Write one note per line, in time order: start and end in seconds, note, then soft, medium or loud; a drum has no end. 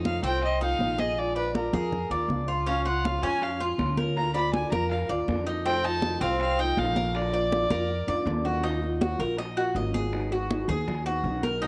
0.00 0.18 F2 medium
0.00 0.23 D#4 medium
0.04 0.23 C3 medium
0.04 0.23 D#3 medium
0.04 0.23 A3 medium
0.04 0.23 C4 medium
0.04 0.22 F4 medium
0.04 0.23 F5 medium
0.04 high conga medium
0.23 0.76 C2 medium
0.23 0.41 A3 soft
0.23 0.60 C4 medium
0.23 0.42 C4 medium
0.23 0.41 F4 medium
0.23 0.41 G5 medium
0.23 high conga soft
0.42 0.60 D#5 medium
0.42 muted nylon-string guitar stroke medium
0.42 high conga soft
0.60 0.79 A3 soft
0.60 0.79 C4 soft
0.60 0.97 D#4 medium
0.60 0.79 F4 soft
0.60 1.01 F5 loud
0.60 high conga soft
0.79 1.67 A#1 medium
0.79 1.16 C3 medium
0.79 1.16 D#3 medium
0.79 1.17 A3 medium
0.79 1.17 C4 medium
0.79 1.17 F4 medium
0.79 high conga medium
0.98 1.35 G#4 medium
0.98 1.20 D#5 medium
0.98 high conga medium
1.17 1.35 F3 medium
1.17 1.35 G#3 medium
1.17 1.36 D4 medium
1.17 1.34 F4 medium
1.17 1.36 D5 medium
1.17 high conga soft
1.36 1.54 G#3 soft
1.36 1.54 D4 soft
1.36 1.54 F4 soft
1.36 1.54 B4 medium
1.36 1.72 D5 medium
1.36 high conga soft
1.54 1.72 F3 medium
1.54 1.73 G#3 medium
1.54 1.73 D4 medium
1.54 1.72 F4 medium
1.54 2.26 A#4 medium
1.54 high conga loud
1.73 2.08 F2 medium
1.73 1.91 G#3 soft
1.73 1.92 D4 soft
1.73 1.91 F4 soft
1.73 2.10 G#4 medium
1.73 high conga medium
1.73 low conga medium
1.92 muted nylon-string guitar stroke medium
1.92 high conga soft
1.92 low conga medium
2.10 2.28 D#2 medium
2.10 2.29 G#3 soft
2.10 2.29 D4 soft
2.10 2.28 F4 soft
2.10 2.47 D5 medium
2.10 high conga soft
2.28 3.17 C#2 medium
2.28 2.66 F3 medium
2.28 2.66 G#3 medium
2.28 2.67 D4 medium
2.28 2.67 F4 medium
2.28 high conga medium
2.48 2.66 F4 medium
2.67 2.85 C#3 medium
2.67 2.85 F3 medium
2.67 2.85 G#3 medium
2.67 2.85 C#4 medium
2.67 2.83 F4 medium
2.67 2.85 F5 medium
2.67 high bongo medium
2.67 high conga soft
2.85 3.03 G#3 soft
2.85 3.03 C#4 soft
2.85 3.03 F4 medium
2.85 3.22 F4 medium
2.85 3.07 F#5 medium
2.85 high conga soft
3.03 3.22 C#3 medium
3.03 3.22 F3 medium
3.03 3.22 G#3 medium
3.03 3.22 C#4 medium
3.03 3.21 F4 medium
3.03 3.24 F5 medium
3.03 high bongo medium
3.03 high conga loud
3.22 3.75 F2 medium
3.22 3.41 G#3 soft
3.22 3.59 C#4 medium
3.22 3.41 C#4 soft
3.22 3.41 F4 medium
3.22 3.45 G#5 loud
3.22 high bongo soft
3.22 high conga soft
3.41 3.61 F5 medium
3.41 muted nylon-string guitar stroke medium
3.41 high bongo medium
3.41 high conga soft
3.59 3.78 G#3 soft
3.59 3.78 C#4 soft
3.59 3.78 F4 medium
3.59 3.97 F4 medium
3.59 high bongo soft
3.59 high conga soft
3.78 4.66 D2 medium
3.78 4.15 C#3 medium
3.78 4.15 F3 medium
3.78 4.16 G#3 medium
3.78 4.16 C#4 medium
3.78 4.16 F4 medium
3.78 high bongo medium
3.78 low bongo medium
3.78 high conga medium
3.97 4.34 A#4 medium
3.97 high bongo soft
3.97 high conga medium
4.16 4.34 D3 medium
4.16 4.34 A#3 medium
4.16 4.35 D4 medium
4.16 4.33 F4 medium
4.16 4.34 A#5 medium
4.16 high bongo medium
4.16 high conga soft
4.34 4.52 A#3 soft
4.34 4.53 D4 soft
4.34 4.53 F4 medium
4.34 4.71 D5 medium
4.34 4.53 B5 loud
4.34 high bongo soft
4.34 high conga soft
4.53 4.71 D3 medium
4.53 4.72 A#3 medium
4.53 4.71 D4 medium
4.53 4.70 F4 medium
4.53 4.71 G#5 medium
4.53 high bongo medium
4.53 high conga medium
4.71 5.07 F2 medium
4.71 4.90 A#3 soft
4.71 4.90 D4 soft
4.71 4.90 F4 soft
4.71 5.08 A#4 medium
4.71 4.90 A#5 medium
4.71 high conga medium
4.71 low conga medium
4.91 5.08 F5 medium
4.91 high bongo medium
4.91 high conga soft
5.09 5.27 D#2 medium
5.09 5.27 A#3 soft
5.09 5.28 D4 soft
5.09 5.27 F4 medium
5.09 5.46 D5 medium
5.09 high bongo soft
5.09 high conga soft
5.28 6.16 F2 medium
5.28 5.65 D3 medium
5.28 5.65 A#3 medium
5.28 5.65 D4 medium
5.28 5.66 F4 medium
5.28 high bongo medium
5.28 low bongo medium
5.28 high conga medium
5.46 5.65 D#4 medium
5.46 high bongo soft
5.65 5.83 C3 medium
5.65 5.83 D#3 medium
5.65 5.84 A3 medium
5.65 5.84 C4 medium
5.65 5.83 C4 medium
5.65 5.82 F4 medium
5.65 5.87 G5 loud
5.65 high bongo medium
5.65 high conga soft
5.84 6.02 A3 soft
5.84 6.03 C4 soft
5.84 6.21 D#4 medium
5.84 6.02 F4 soft
5.84 6.22 A5 loud
5.84 high conga soft
6.02 6.21 C3 medium
6.02 6.21 D#3 medium
6.02 6.21 A3 medium
6.02 6.20 C4 medium
6.02 6.19 F4 medium
6.02 high bongo medium
6.02 high conga medium
6.21 6.73 C2 medium
6.21 6.39 A3 soft
6.21 6.58 C4 medium
6.21 6.39 C4 medium
6.21 6.39 F4 medium
6.21 6.39 F5 loud
6.21 high bongo soft
6.21 high conga soft
6.40 6.62 F5 loud
6.40 muted nylon-string guitar stroke medium
6.40 high bongo medium
6.40 high conga soft
6.59 6.78 A3 soft
6.59 6.77 C4 soft
6.59 6.95 D#4 medium
6.59 6.77 F4 medium
6.59 6.80 G5 loud
6.59 high bongo soft
6.59 high conga soft
6.77 7.65 A#1 medium
6.77 7.14 C3 medium
6.77 7.14 D#3 medium
6.77 7.15 A3 medium
6.77 7.15 C4 medium
6.77 7.15 F4 medium
6.77 7.18 F5 medium
6.77 high bongo medium
6.77 low bongo medium
6.77 high conga medium
6.96 7.32 A#4 medium
6.96 high bongo soft
6.96 high conga medium
7.15 7.33 D3 medium
7.15 7.33 A#3 medium
7.15 7.33 D4 medium
7.15 7.32 F4 medium
7.15 8.28 D5 medium
7.15 high bongo medium
7.15 high conga soft
7.33 7.51 A#3 soft
7.33 7.52 D4 soft
7.33 7.51 F4 soft
7.33 7.70 D5 medium
7.33 high bongo soft
7.33 high conga soft
7.52 7.70 D3 medium
7.52 7.70 A#3 medium
7.52 7.70 D4 medium
7.52 7.69 F4 medium
7.52 high bongo medium
7.52 high conga loud
7.70 8.05 F2 medium
7.70 7.88 A#3 soft
7.70 7.89 D4 soft
7.70 7.89 F4 soft
7.70 8.07 A#4 medium
7.70 high bongo medium
7.70 high conga medium
7.70 low conga medium
7.89 muted nylon-string guitar stroke medium
7.89 high conga soft
8.07 8.25 F2 medium
8.07 8.26 A#3 soft
8.07 8.26 D4 soft
8.07 8.26 F4 medium
8.07 8.44 D5 medium
8.07 low bongo medium
8.07 high conga soft
8.26 9.14 D#2 medium
8.26 8.63 D3 medium
8.26 8.64 A#3 medium
8.26 8.64 D4 medium
8.26 8.64 F4 medium
8.26 low bongo loud
8.26 high conga medium
8.45 8.63 F#4 medium
8.45 low bongo medium
8.64 8.82 D#3 medium
8.64 8.82 F#3 medium
8.64 8.82 A#3 medium
8.64 9.00 D#4 medium
8.64 8.81 F4 medium
8.64 high bongo medium
8.64 high conga soft
8.82 9.00 F#3 soft
8.82 9.01 A#3 soft
8.82 9.00 F4 soft
8.82 high bongo soft
8.82 high conga soft
9.01 9.19 D#3 medium
9.01 9.19 F#3 medium
9.01 9.19 A#3 medium
9.01 9.18 F4 medium
9.01 9.19 F#4 medium
9.01 high bongo medium
9.01 high conga loud
9.19 9.72 A#1 medium
9.19 9.37 F#3 soft
9.19 9.38 A#3 soft
9.19 9.37 F4 medium
9.19 9.38 A#4 medium
9.19 high conga soft
9.38 9.57 D#5 medium
9.38 muted nylon-string guitar stroke medium
9.38 high bongo medium
9.38 high conga soft
9.56 9.74 F#3 soft
9.56 9.75 A#3 soft
9.56 9.75 F4 soft
9.56 9.75 F#4 medium
9.56 high bongo soft
9.56 high conga soft
9.75 10.63 G#1 medium
9.75 10.11 D#3 medium
9.75 10.12 F#3 medium
9.75 10.13 A#3 medium
9.75 10.13 F4 medium
9.75 9.94 D#5 medium
9.75 high bongo soft
9.75 low bongo medium
9.75 high conga soft
9.94 10.30 G#4 medium
9.94 high bongo soft
9.94 high conga medium
10.13 10.31 D#3 medium
10.13 10.31 F#3 medium
10.13 10.31 B3 medium
10.13 10.32 D#4 medium
10.13 10.30 G#4 medium
10.13 high bongo medium
10.13 high conga soft
10.31 10.50 B3 soft
10.31 10.50 D#4 soft
10.31 10.68 F#4 medium
10.31 10.49 G#4 medium
10.31 high bongo soft
10.31 high conga soft
10.50 10.68 D#3 medium
10.50 10.68 F#3 medium
10.50 10.69 B3 medium
10.50 10.68 D#4 medium
10.50 10.67 G#4 medium
10.50 high bongo medium
10.50 high conga loud
10.68 11.20 D#2 medium
10.68 10.87 B3 soft
10.68 10.87 D#4 soft
10.68 10.87 G#4 medium
10.68 11.05 G#4 medium
10.68 high conga soft
10.68 low conga medium
10.87 muted nylon-string guitar stroke medium
10.87 high bongo medium
10.87 high conga soft
10.87 low conga medium
11.06 11.25 B3 soft
11.06 11.24 D#4 soft
11.06 11.42 F#4 medium
11.06 11.24 G#4 medium
11.06 high bongo soft
11.06 high conga soft
11.24 11.67 B1 medium
11.24 11.61 D#3 medium
11.24 11.62 F#3 medium
11.24 11.62 B3 medium
11.24 11.62 D#4 medium
11.24 11.62 G#4 medium
11.24 high bongo soft
11.24 low bongo medium
11.24 high conga soft
11.43 11.61 A#4 medium
11.43 high bongo soft
11.43 high conga medium
11.62 11.67 B2 medium
11.62 11.67 D#3 medium
11.62 11.67 A#3 medium
11.62 11.67 B3 medium
11.62 11.67 D#4 medium
11.62 11.67 F#4 medium
11.62 high bongo medium
11.62 high conga soft